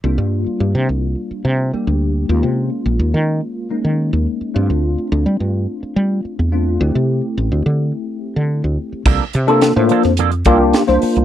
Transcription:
<<
  \new Staff \with { instrumentName = "Clean electric guitar" } { \time 4/4 \key ees \major \tempo 4 = 106 r1 | r1 | r1 | r1 |
<f bes d' a'>16 r8 <bes d' a'>16 r8 <f bes d' a'>16 r16 <f bes d' a'>16 r16 <f bes d' a'>16 r4 r16 | }
  \new Staff \with { instrumentName = "Tine electric piano" } { \time 4/4 \key ees \major <g bes d' f'>2. <g bes d' g'>4 | <aes bes des' f'>2~ <aes bes des' f'>8 <aes bes des' ees'>4. | <a c' d' f'>2.~ <a c' d' f'>8 <a c' d' f'>8 | <a c' e' g'>1 |
r8. <bes d' f' a'>8 <bes d' f' c''>8 r16 <f' a'>16 r16 <bes d' f' g'>8 r16 <bes d' f' c''>8. | }
  \new Staff \with { instrumentName = "Fretless electric bass" } { \clef bass \time 4/4 \key ees \major c,16 g,8 r16 g,16 c16 c,8 r8 c8 r16 d,8. | ees,16 c8 r16 bes,,16 ees,16 ees8 r8. ees8 ees,16 r8 | g,16 d,8 r16 d,16 g16 g,8 r8 g8 r16 e,8. | d,16 c8 r16 a,,16 d,16 d8 r8. d8 d,16 r8 |
c,16 r16 c8. a,16 r16 f,8. c,8 r16 c,16 r16 c,16 | }
  \new DrumStaff \with { instrumentName = "Drums" } \drummode { \time 4/4 r4 r4 r4 r4 | r4 r4 r4 r4 | r4 r4 r4 r4 | r4 r4 r4 r4 |
<cymc bd>8 hh16 hh16 <hh sn>8 hh16 <hh sn>16 hh16 hh16 <hh bd>8 <hh sn>16 <hh sn>16 hho16 hh16 | }
>>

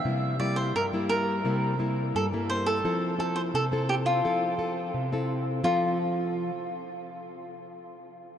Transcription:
<<
  \new Staff \with { instrumentName = "Cavaquinho" } { \time 4/4 \key f \major \tempo 4 = 86 e''8 d''16 c''16 bes'8 bes'4. a'8 c''16 a'16~ | a'8 a'16 c''16 a'8 g'16 f'4.~ f'16 r8 | f'8 r2. r8 | }
  \new Staff \with { instrumentName = "Nylon-string guitar" } { \time 4/4 \key f \major << { <g bes e'>8 <g bes e'>8 r16 <g bes e'>8. <g bes e'>8 <g bes e'>8. <g bes e'>8. | <c' e' a'>8 <c' e' a'>8. <c' e' a'>8. <c' e' a'>8 <c' a'>8. <c' e' a'>8. | <f c' a'>8 r2. r8 | } \\ { c4 g,4 c4 g,4 | f4 c4 f4 c4 | r1 | } >> }
>>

